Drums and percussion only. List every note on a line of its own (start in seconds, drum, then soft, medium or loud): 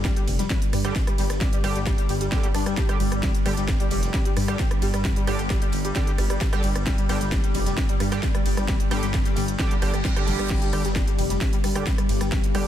0.04 kick loud
0.04 snare loud
0.04 closed hi-hat medium
0.04 ride medium
0.16 closed hi-hat medium
0.28 closed hi-hat medium
0.28 open hi-hat loud
0.28 ride medium
0.39 snare soft
0.39 closed hi-hat medium
0.50 kick loud
0.50 snare loud
0.50 closed hi-hat medium
0.50 ride medium
0.62 closed hi-hat medium
0.62 closed hi-hat soft
0.73 cross-stick medium
0.73 closed hi-hat medium
0.73 open hi-hat loud
0.73 ride medium
0.84 cross-stick medium
0.84 closed hi-hat soft
0.84 closed hi-hat medium
0.96 kick loud
0.96 snare loud
0.96 closed hi-hat medium
0.96 ride medium
1.07 cross-stick loud
1.07 closed hi-hat medium
1.18 closed hi-hat medium
1.18 open hi-hat loud
1.18 ride medium
1.30 cross-stick loud
1.30 snare soft
1.30 closed hi-hat medium
1.41 kick loud
1.41 snare loud
1.41 closed hi-hat medium
1.41 ride medium
1.52 closed hi-hat soft
1.52 closed hi-hat medium
1.64 cross-stick medium
1.64 closed hi-hat medium
1.64 open hi-hat loud
1.64 ride medium
1.75 snare soft
1.75 closed hi-hat medium
1.86 kick loud
1.86 snare loud
1.86 closed hi-hat medium
1.86 ride medium
1.98 closed hi-hat soft
1.98 closed hi-hat medium
2.09 closed hi-hat medium
2.09 open hi-hat loud
2.09 ride medium
2.21 closed hi-hat medium
2.32 kick loud
2.32 snare loud
2.32 closed hi-hat medium
2.32 ride medium
2.43 closed hi-hat medium
2.55 cross-stick medium
2.55 closed hi-hat medium
2.55 open hi-hat loud
2.55 ride medium
2.66 cross-stick loud
2.66 closed hi-hat medium
2.77 kick loud
2.77 snare loud
2.77 closed hi-hat medium
2.77 ride soft
2.89 cross-stick loud
2.89 closed hi-hat medium
3.00 closed hi-hat medium
3.00 open hi-hat loud
3.00 ride medium
3.12 cross-stick loud
3.12 closed hi-hat medium
3.23 kick loud
3.23 snare loud
3.23 closed hi-hat medium
3.23 ride medium
3.35 closed hi-hat medium
3.46 cross-stick medium
3.46 closed hi-hat medium
3.46 open hi-hat loud
3.46 ride medium
3.57 snare soft
3.57 closed hi-hat medium
3.68 kick loud
3.68 snare loud
3.68 closed hi-hat medium
3.68 ride medium
3.80 closed hi-hat medium
3.91 closed hi-hat medium
3.91 open hi-hat loud
3.91 ride medium
4.03 snare soft
4.03 closed hi-hat medium
4.14 kick loud
4.14 snare loud
4.14 closed hi-hat medium
4.14 ride medium
4.25 closed hi-hat soft
4.25 closed hi-hat medium
4.37 cross-stick medium
4.37 closed hi-hat medium
4.37 open hi-hat loud
4.37 ride medium
4.48 cross-stick loud
4.48 closed hi-hat medium
4.48 closed hi-hat soft
4.59 kick loud
4.59 snare loud
4.59 closed hi-hat medium
4.59 ride medium
4.71 cross-stick loud
4.71 closed hi-hat medium
4.82 closed hi-hat medium
4.82 open hi-hat loud
4.82 ride medium
4.94 cross-stick loud
4.94 snare soft
4.94 closed hi-hat medium
5.05 kick loud
5.05 snare loud
5.05 closed hi-hat medium
5.05 ride medium
5.16 closed hi-hat soft
5.16 closed hi-hat medium
5.27 cross-stick medium
5.27 closed hi-hat medium
5.27 open hi-hat loud
5.27 ride medium
5.39 snare soft
5.39 closed hi-hat medium
5.50 kick loud
5.50 snare loud
5.50 closed hi-hat medium
5.50 closed hi-hat loud
5.50 ride medium
5.62 closed hi-hat medium
5.62 closed hi-hat soft
5.72 closed hi-hat medium
5.72 open hi-hat medium
5.72 ride medium
5.85 closed hi-hat medium
5.95 kick loud
5.95 snare loud
5.95 closed hi-hat medium
5.95 ride medium
6.07 closed hi-hat medium
6.18 cross-stick medium
6.18 closed hi-hat medium
6.18 open hi-hat loud
6.18 ride medium
6.30 cross-stick loud
6.30 closed hi-hat medium
6.40 kick loud
6.40 snare loud
6.40 closed hi-hat medium
6.40 ride medium
6.53 cross-stick loud
6.53 closed hi-hat medium
6.63 closed hi-hat medium
6.63 open hi-hat medium
6.63 ride medium
6.76 cross-stick loud
6.76 closed hi-hat medium
6.86 kick loud
6.86 snare loud
6.86 closed hi-hat medium
6.86 ride medium
6.98 closed hi-hat medium
7.09 cross-stick medium
7.09 closed hi-hat medium
7.09 open hi-hat loud
7.09 ride medium
7.20 snare soft
7.20 closed hi-hat medium
7.32 kick loud
7.32 snare loud
7.32 closed hi-hat medium
7.32 ride medium
7.44 closed hi-hat medium
7.54 closed hi-hat medium
7.54 open hi-hat medium
7.54 ride medium
7.66 snare soft
7.66 closed hi-hat medium
7.77 kick loud
7.77 snare loud
7.77 closed hi-hat medium
7.77 ride medium
7.89 closed hi-hat soft
7.89 closed hi-hat medium
8.00 cross-stick medium
8.00 closed hi-hat medium
8.00 open hi-hat loud
8.00 ride medium
8.12 cross-stick medium
8.12 closed hi-hat medium
8.12 closed hi-hat soft
8.22 kick loud
8.22 snare loud
8.22 closed hi-hat medium
8.22 ride medium
8.35 cross-stick loud
8.35 closed hi-hat medium
8.46 closed hi-hat medium
8.46 open hi-hat medium
8.46 ride medium
8.57 cross-stick medium
8.57 snare soft
8.57 closed hi-hat medium
8.68 kick loud
8.68 snare loud
8.68 closed hi-hat medium
8.68 ride medium
8.80 closed hi-hat soft
8.80 closed hi-hat medium
8.91 cross-stick medium
8.91 closed hi-hat medium
8.91 open hi-hat loud
8.91 ride medium
9.03 snare soft
9.03 closed hi-hat medium
9.14 kick loud
9.14 snare loud
9.14 closed hi-hat medium
9.14 ride medium
9.25 closed hi-hat soft
9.25 closed hi-hat medium
9.36 snare loud
9.36 closed hi-hat medium
9.36 open hi-hat medium
9.36 ride medium
9.48 closed hi-hat medium
9.59 kick loud
9.59 snare loud
9.59 closed hi-hat medium
9.59 ride medium
9.71 closed hi-hat medium
9.82 cross-stick medium
9.82 closed hi-hat medium
9.82 open hi-hat loud
9.82 ride medium
9.94 cross-stick medium
9.94 closed hi-hat medium
10.05 kick loud
10.05 snare loud
10.05 closed hi-hat medium
10.05 ride medium
10.16 cross-stick medium
10.16 closed hi-hat medium
10.27 snare loud
10.27 closed hi-hat medium
10.27 open hi-hat medium
10.27 ride medium
10.39 cross-stick medium
10.39 closed hi-hat medium
10.50 kick loud
10.50 snare loud
10.50 closed hi-hat medium
10.50 crash medium
10.50 ride medium
10.62 closed hi-hat medium
10.73 cross-stick medium
10.73 closed hi-hat medium
10.73 open hi-hat loud
10.73 ride medium
10.85 snare soft
10.85 closed hi-hat medium
10.95 kick loud
10.95 snare loud
10.95 closed hi-hat medium
10.95 ride medium
11.07 closed hi-hat medium
11.19 closed hi-hat medium
11.19 open hi-hat medium
11.19 ride medium
11.30 snare soft
11.30 closed hi-hat medium
11.41 kick loud
11.41 snare loud
11.41 closed hi-hat medium
11.41 ride medium
11.53 closed hi-hat medium
11.53 closed hi-hat soft
11.64 cross-stick medium
11.64 closed hi-hat medium
11.64 open hi-hat loud
11.64 ride medium
11.75 cross-stick medium
11.75 closed hi-hat medium
11.75 closed hi-hat soft
11.87 kick loud
11.87 snare loud
11.87 closed hi-hat loud
11.87 closed hi-hat medium
11.87 ride medium
11.98 cross-stick medium
11.98 closed hi-hat medium
12.09 closed hi-hat medium
12.09 open hi-hat medium
12.09 ride medium
12.20 cross-stick medium
12.20 snare soft
12.20 closed hi-hat medium
12.32 kick loud
12.32 snare loud
12.32 closed hi-hat medium
12.32 ride medium
12.43 closed hi-hat soft
12.43 closed hi-hat medium
12.55 cross-stick medium
12.55 closed hi-hat medium
12.55 open hi-hat loud
12.55 ride medium